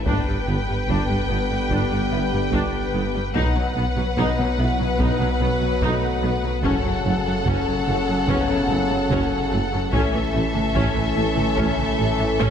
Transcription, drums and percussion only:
0.06 taiko
0.88 taiko
1.71 taiko
2.53 taiko
3.35 taiko
4.17 taiko
5.00 taiko
5.82 taiko
6.64 taiko
7.46 taiko
8.29 taiko
9.11 taiko
9.93 taiko
10.55 taiko mid
10.75 taiko
11.37 taiko mid
11.57 taiko
11.78 taiko mid
12.40 taiko

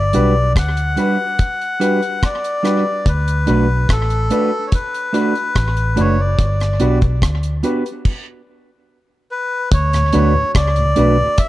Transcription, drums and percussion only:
0.13 closed hi-hat
0.56 kick, cross-stick, closed hi-hat
0.77 closed hi-hat
0.97 closed hi-hat
1.39 kick, closed hi-hat
1.61 closed hi-hat
1.81 closed hi-hat
2.02 closed hi-hat
2.23 kick, cross-stick, closed hi-hat
2.44 closed hi-hat
2.65 cross-stick, closed hi-hat
3.06 kick, closed hi-hat
3.28 closed hi-hat
3.47 closed hi-hat
3.89 kick, cross-stick, closed hi-hat
4.10 closed hi-hat
4.30 closed hi-hat
4.72 kick, closed hi-hat
4.94 closed hi-hat
5.14 closed hi-hat
5.35 closed hi-hat
5.56 kick, cross-stick, closed hi-hat
5.77 closed hi-hat
5.97 closed hi-hat
6.39 kick, closed hi-hat
6.60 cross-stick, closed hi-hat
6.80 closed hi-hat
7.01 kick, closed hi-hat
7.22 kick, cross-stick, closed hi-hat
7.43 closed hi-hat
7.63 closed hi-hat
7.86 closed hi-hat
8.05 kick, crash
9.72 kick, closed hi-hat
9.93 cross-stick, closed hi-hat
10.13 closed hi-hat
10.55 kick, cross-stick, closed hi-hat
10.76 closed hi-hat
10.96 closed hi-hat
11.38 kick, closed hi-hat

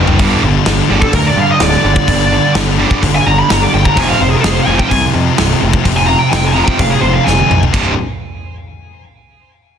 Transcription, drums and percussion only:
0.07 floor tom
0.19 kick, open hi-hat
0.66 snare, open hi-hat
1.02 kick
1.13 kick, open hi-hat
1.60 snare, open hi-hat
1.96 kick
2.08 kick, open hi-hat
2.55 snare, open hi-hat
2.91 kick
3.03 kick, open hi-hat
3.50 snare, open hi-hat
3.85 kick
3.97 kick, open hi-hat
4.44 snare, open hi-hat
4.79 kick
4.91 kick, open hi-hat
5.38 snare, open hi-hat
5.73 kick
5.85 kick, open hi-hat
6.33 snare, open hi-hat
6.68 kick
6.79 kick, open hi-hat
7.27 snare
7.38 high tom
7.51 mid tom
7.63 floor tom
7.74 kick, crash

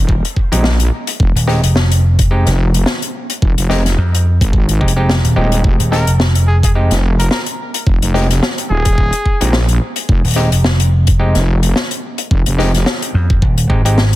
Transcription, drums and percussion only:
0.09 kick
0.25 closed hi-hat
0.36 kick
0.52 closed hi-hat
0.64 snare
0.80 closed hi-hat
1.07 closed hi-hat
1.20 kick
1.37 closed hi-hat
1.48 snare
1.64 closed hi-hat
1.76 snare
1.92 closed hi-hat
2.19 kick, closed hi-hat
2.46 snare, closed hi-hat
2.74 closed hi-hat
2.86 snare
3.02 closed hi-hat
3.30 closed hi-hat
3.42 kick
3.58 closed hi-hat
3.70 snare
3.85 snare, closed hi-hat
4.15 closed hi-hat
4.41 kick, closed hi-hat
4.53 kick
4.69 closed hi-hat
4.81 kick
4.88 closed hi-hat
5.09 snare
5.25 closed hi-hat
5.52 closed hi-hat
5.64 kick
5.80 closed hi-hat
5.92 snare
6.07 closed hi-hat
6.20 snare
6.35 closed hi-hat
6.63 kick, closed hi-hat
6.91 snare, closed hi-hat
7.20 closed hi-hat
7.31 snare
7.46 closed hi-hat
7.74 closed hi-hat
7.87 kick
8.02 closed hi-hat
8.14 snare
8.29 snare, closed hi-hat
8.43 snare
8.58 closed hi-hat
8.85 kick, closed hi-hat
8.98 kick
9.13 closed hi-hat
9.26 kick
9.41 closed hi-hat
9.53 snare
9.69 closed hi-hat
9.96 closed hi-hat
10.09 kick
10.25 closed hi-hat
10.28 closed hi-hat
10.31 closed hi-hat
10.34 snare, closed hi-hat
10.52 closed hi-hat
10.64 snare
10.80 closed hi-hat
11.07 kick, closed hi-hat
11.35 snare, closed hi-hat
11.63 closed hi-hat
11.76 snare
11.91 closed hi-hat
12.18 closed hi-hat
12.31 kick
12.46 closed hi-hat
12.59 snare
12.74 snare, closed hi-hat
12.86 snare
13.02 closed hi-hat
13.30 kick
13.42 kick
13.58 closed hi-hat
13.70 kick
13.86 closed hi-hat
13.98 snare

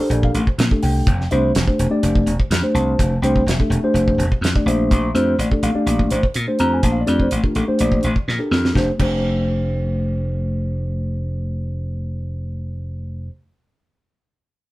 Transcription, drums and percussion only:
0.11 closed hi-hat
0.23 kick
0.35 closed hi-hat
0.47 kick
0.59 snare, closed hi-hat
0.71 kick
0.83 open hi-hat
1.07 kick, closed hi-hat
1.21 snare
1.31 closed hi-hat
1.55 snare, closed hi-hat
1.68 kick
1.79 closed hi-hat
2.03 closed hi-hat
2.15 kick
2.27 closed hi-hat
2.40 kick
2.51 snare, closed hi-hat
2.76 closed hi-hat
2.99 kick, closed hi-hat
3.23 closed hi-hat
3.36 kick
3.48 snare, closed hi-hat
3.60 kick
3.72 closed hi-hat
3.96 closed hi-hat
4.08 kick
4.20 closed hi-hat
4.32 kick
4.44 snare, closed hi-hat
4.56 kick
4.68 closed hi-hat
4.91 kick, closed hi-hat
5.15 closed hi-hat
5.39 closed hi-hat
5.51 kick
5.63 closed hi-hat
5.87 closed hi-hat
5.99 kick
6.10 closed hi-hat
6.23 kick
6.34 closed hi-hat
6.59 closed hi-hat
6.83 kick, closed hi-hat
7.07 closed hi-hat
7.20 kick
7.31 closed hi-hat
7.44 kick
7.55 closed hi-hat
7.79 closed hi-hat
7.92 kick
8.03 closed hi-hat
8.16 kick
8.29 snare
8.52 snare
8.65 snare
8.75 kick, snare
8.99 kick, crash

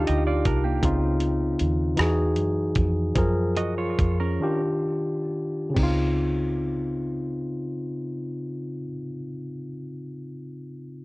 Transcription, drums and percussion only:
0.07 closed hi-hat
0.45 kick, closed hi-hat
0.83 kick, closed hi-hat
1.20 closed hi-hat
1.59 closed hi-hat
1.97 cross-stick, closed hi-hat
2.36 closed hi-hat
2.75 kick, closed hi-hat
3.15 kick, closed hi-hat
3.56 closed hi-hat
3.98 kick, closed hi-hat
5.76 kick, crash

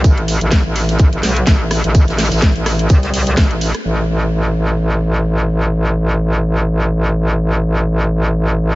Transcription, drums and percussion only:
0.04 kick, closed hi-hat, tambourine
0.17 closed hi-hat
0.28 open hi-hat, tambourine
0.41 closed hi-hat
0.51 kick, snare, closed hi-hat, tambourine
0.76 open hi-hat, tambourine
0.89 snare, closed hi-hat
0.99 kick, closed hi-hat, tambourine
1.13 closed hi-hat
1.23 snare, open hi-hat, tambourine
1.36 closed hi-hat
1.47 kick, snare, closed hi-hat, tambourine
1.70 cross-stick, snare, open hi-hat, tambourine
1.84 closed hi-hat
1.95 kick, closed hi-hat, tambourine
2.08 snare, closed hi-hat
2.18 snare, open hi-hat, tambourine
2.25 snare, tambourine
2.31 snare, closed hi-hat, tambourine
2.37 snare, tambourine
2.42 kick, snare, closed hi-hat
2.55 closed hi-hat
2.66 cross-stick, snare, open hi-hat, tambourine
2.79 closed hi-hat
2.89 kick, closed hi-hat, tambourine
3.03 snare, closed hi-hat
3.14 open hi-hat
3.27 closed hi-hat
3.37 kick, snare, closed hi-hat, tambourine
3.51 closed hi-hat
3.61 open hi-hat, tambourine
3.74 cross-stick, closed hi-hat

